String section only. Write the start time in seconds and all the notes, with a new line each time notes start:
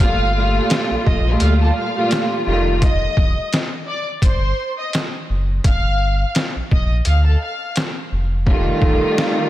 0.00 A#2 G3 A3 F4
0.36 A#2 G3 A3 F4
1.27 A#2 G3 A3 F4
1.95 A#2 G3 A3 F4
2.45 D#3 G3 A3 F4
8.46 D#3 G3 A3 F4